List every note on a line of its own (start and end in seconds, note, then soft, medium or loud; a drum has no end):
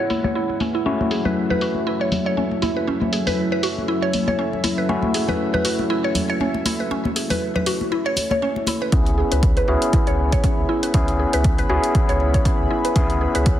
0.00 0.82 G#3 medium
0.00 0.83 B3 medium
0.00 0.82 C#4 medium
0.00 0.83 C#4 medium
0.00 0.83 E4 medium
0.00 8.88 E4 medium
0.00 0.83 G#4 medium
0.00 0.82 B4 medium
0.00 0.82 F#5 medium
0.10 0.18 E4 medium
0.10 open hi-hat medium
0.10 muted conga soft
0.10 high conga medium
0.24 0.34 C#5 medium
0.24 high conga loud
0.35 0.48 E4 medium
0.50 muted conga soft
0.60 0.74 C#4 medium
0.60 open hi-hat medium
0.60 high conga medium
0.75 0.85 E4 medium
0.86 8.89 F#3 medium
0.86 4.87 A3 medium
0.86 8.88 C#4 medium
0.86 0.98 C#4 medium
0.86 4.87 C#4 medium
0.86 4.87 E4 medium
0.86 4.87 F#4 medium
0.86 8.88 A4 medium
0.86 8.89 E5 medium
0.86 muted conga soft
1.01 high conga loud
1.11 1.19 G#4 medium
1.11 open hi-hat medium
1.25 1.31 B4 loud
1.25 muted conga soft
1.25 high conga medium
1.25 low conga medium
1.50 1.60 B4 loud
1.50 low conga medium
1.61 1.75 F#4 loud
1.61 open hi-hat medium
1.75 muted conga soft
1.87 2.00 E4 loud
2.01 2.11 C#5 loud
2.12 open hi-hat medium
2.12 muted conga soft
2.12 high conga medium
2.12 low conga medium
2.26 2.36 C#5 loud
2.37 2.51 C#4 medium
2.37 high conga medium
2.51 muted conga soft
2.62 2.75 E4 loud
2.62 open hi-hat medium
2.62 high conga medium
2.77 2.86 B4 medium
2.87 3.00 C#4 medium
2.87 muted conga soft
3.01 high conga loud
3.13 3.20 G#4 medium
3.13 open hi-hat medium
3.27 3.33 B4 loud
3.27 open hi-hat soft
3.27 muted conga soft
3.27 low conga medium
3.52 3.62 B4 loud
3.63 3.77 F#4 loud
3.63 open hi-hat medium
3.78 muted conga soft
3.88 4.02 E4 loud
4.02 4.12 C#5 loud
4.13 open hi-hat medium
4.13 muted conga soft
4.13 high conga medium
4.28 4.38 C#5 loud
4.28 high conga loud
4.39 4.52 C#4 medium
4.53 muted conga medium
4.64 4.77 E4 loud
4.64 open hi-hat medium
4.64 high conga medium
4.78 4.88 B4 medium
4.89 8.90 A3 medium
4.89 8.90 C#4 medium
4.89 5.02 C#4 medium
4.89 8.90 E4 medium
4.89 8.90 F#4 medium
4.89 muted conga medium
5.03 high conga loud
5.14 5.22 G#4 medium
5.14 open hi-hat medium
5.28 5.35 B4 loud
5.28 muted conga soft
5.28 high conga medium
5.28 low conga medium
5.54 5.64 B4 loud
5.54 low conga medium
5.65 5.78 F#4 loud
5.65 open hi-hat medium
5.79 muted conga medium
5.90 6.03 E4 loud
6.04 6.14 C#5 loud
6.15 open hi-hat medium
6.15 muted conga soft
6.15 high conga medium
6.15 low conga medium
6.30 6.39 C#5 loud
6.40 6.54 C#4 medium
6.40 high conga medium
6.54 muted conga medium
6.66 6.78 E4 loud
6.66 open hi-hat medium
6.66 high conga medium
6.80 6.90 B4 medium
6.91 7.04 C#4 medium
6.91 muted conga medium
7.05 high conga medium
7.16 7.24 G#4 medium
7.16 open hi-hat medium
7.30 7.36 B4 loud
7.30 open hi-hat medium
7.30 muted conga soft
7.30 high conga medium
7.30 low conga medium
7.56 7.65 B4 loud
7.56 low conga medium
7.66 7.80 F#4 loud
7.66 open hi-hat medium
7.81 muted conga medium
7.92 8.05 E4 loud
8.06 8.16 C#5 loud
8.16 open hi-hat medium
8.16 muted conga soft
8.16 high conga medium
8.31 8.41 C#5 loud
8.31 high conga loud
8.42 8.56 C#4 medium
8.56 muted conga soft
8.67 8.80 E4 loud
8.67 open hi-hat medium
8.67 high conga medium
8.82 8.91 B4 medium
8.92 9.23 C#2 medium
8.92 9.65 B3 medium
8.92 9.65 C#4 medium
8.92 9.05 C#4 medium
8.92 9.65 E4 medium
8.92 13.60 G#4 medium
8.92 9.65 G#4 medium
8.92 13.60 C#5 medium
8.92 13.60 E5 medium
8.92 13.60 B5 medium
8.92 kick loud
8.92 closed hi-hat medium
9.06 closed hi-hat soft
9.18 9.25 G#4 medium
9.32 9.61 C#2 loud
9.32 9.38 B4 loud
9.32 closed hi-hat soft
9.32 mid tom medium
9.43 kick loud
9.43 closed hi-hat medium
9.57 9.67 B4 loud
9.57 closed hi-hat soft
9.68 9.77 C#2 medium
9.68 10.91 B3 medium
9.68 10.92 C#4 medium
9.68 10.91 E4 medium
9.68 9.82 F#4 loud
9.68 10.92 G#4 loud
9.68 mid tom medium
9.82 closed hi-hat soft
9.93 10.07 E4 loud
9.93 kick loud
9.93 closed hi-hat medium
10.07 10.37 C#2 medium
10.07 10.17 C#5 loud
10.07 closed hi-hat soft
10.32 10.43 C#5 loud
10.32 kick medium
10.32 closed hi-hat soft
10.44 10.57 C#4 medium
10.44 kick loud
10.44 closed hi-hat medium
10.58 10.65 C#2 medium
10.69 10.82 E4 loud
10.83 10.93 B4 medium
10.83 closed hi-hat soft
10.94 11.25 C#2 medium
10.94 11.67 B3 medium
10.94 11.67 C#4 medium
10.94 11.07 C#4 medium
10.94 11.67 E4 medium
10.94 11.67 G#4 medium
10.94 kick loud
10.94 closed hi-hat medium
11.08 closed hi-hat soft
11.19 11.27 G#4 medium
11.33 11.63 C#2 medium
11.33 11.40 B4 loud
11.33 closed hi-hat soft
11.33 mid tom medium
11.44 kick loud
11.44 closed hi-hat medium
11.58 11.69 B4 loud
11.58 closed hi-hat soft
11.69 11.78 C#2 loud
11.69 12.93 B3 medium
11.69 12.93 C#4 medium
11.69 12.93 E4 medium
11.69 11.83 F#4 loud
11.69 12.93 G#4 loud
11.69 mid tom medium
11.84 closed hi-hat soft
11.95 12.08 E4 loud
11.95 kick loud
11.95 closed hi-hat medium
12.09 12.38 C#2 loud
12.09 12.19 C#5 loud
12.09 closed hi-hat soft
12.20 mid tom medium
12.34 12.44 C#5 loud
12.34 kick medium
12.34 closed hi-hat soft
12.45 12.59 C#4 medium
12.45 kick loud
12.45 closed hi-hat medium
12.60 12.66 C#2 medium
12.71 12.83 E4 loud
12.85 12.95 B4 medium
12.85 closed hi-hat soft
12.96 13.26 C#2 loud
12.96 13.60 B3 medium
12.96 13.60 C#4 medium
12.96 13.09 C#4 medium
12.96 13.60 E4 medium
12.96 13.60 G#4 medium
12.96 kick loud
12.96 closed hi-hat medium
13.10 closed hi-hat soft
13.21 13.29 G#4 medium
13.35 13.60 C#2 loud
13.35 13.41 B4 loud
13.35 closed hi-hat soft
13.35 mid tom medium
13.46 kick loud
13.46 closed hi-hat medium